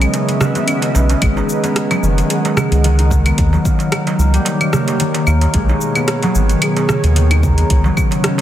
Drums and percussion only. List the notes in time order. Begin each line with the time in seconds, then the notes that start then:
0.02 closed hi-hat, cabasa, claves
0.14 closed hi-hat, darbuka ka, cabasa
0.29 closed hi-hat, cabasa
0.41 cross-stick, darbuka tek, darbuka dum, cabasa
0.55 closed hi-hat, darbuka tek, cabasa
0.68 closed hi-hat, cabasa, claves
0.82 closed hi-hat, darbuka tek, cabasa
0.95 darbuka tek, cabasa
1.10 closed hi-hat, darbuka ka, cabasa
1.22 kick, closed hi-hat, cabasa, claves
1.37 darbuka ka, cabasa
1.49 cabasa
1.64 closed hi-hat, darbuka ka, cabasa
1.76 cross-stick, closed hi-hat, cabasa
1.91 closed hi-hat, darbuka tek, cabasa, claves
2.03 cabasa
2.18 closed hi-hat, cabasa
2.30 closed hi-hat, cabasa
2.45 closed hi-hat, darbuka tek, cabasa
2.57 cross-stick, darbuka dum, cabasa, claves
2.72 closed hi-hat, cabasa
2.84 closed hi-hat, cabasa
2.99 closed hi-hat, cabasa
3.10 kick, darbuka dum, cabasa
3.26 closed hi-hat, cabasa, claves
3.38 kick, closed hi-hat, cabasa
3.53 darbuka ka, cabasa
3.65 kick, cabasa
3.79 closed hi-hat, darbuka ka, cabasa
3.92 cross-stick, closed hi-hat, cabasa, claves
4.07 closed hi-hat, darbuka tek, cabasa
4.19 cabasa
4.34 closed hi-hat, cabasa
4.45 closed hi-hat, darbuka ka, cabasa
4.61 closed hi-hat, cabasa, claves
4.73 cross-stick, darbuka tek, darbuka dum, cabasa
4.88 closed hi-hat, darbuka tek, cabasa
5.00 closed hi-hat, cabasa
5.14 closed hi-hat, darbuka tek, cabasa
5.27 cabasa, claves
5.41 closed hi-hat, darbuka ka, cabasa
5.54 kick, closed hi-hat, cabasa
5.69 darbuka ka, cabasa
5.81 cabasa
5.95 closed hi-hat, darbuka ka, cabasa, claves
6.08 cross-stick, closed hi-hat, cabasa
6.23 closed hi-hat, darbuka tek, cabasa
6.35 cabasa
6.49 closed hi-hat, cabasa
6.62 closed hi-hat, cabasa, claves
6.77 closed hi-hat, darbuka tek, cabasa
6.89 cross-stick, darbuka dum, cabasa
7.04 closed hi-hat, cabasa
7.16 closed hi-hat, cabasa
7.31 closed hi-hat, cabasa, claves
7.43 kick, darbuka dum, cabasa
7.58 closed hi-hat, cabasa
7.70 kick, closed hi-hat, cabasa
7.84 darbuka ka, cabasa
7.97 kick, cabasa, claves
8.11 closed hi-hat, darbuka ka, cabasa
8.24 cross-stick, closed hi-hat, cabasa
8.38 darbuka tek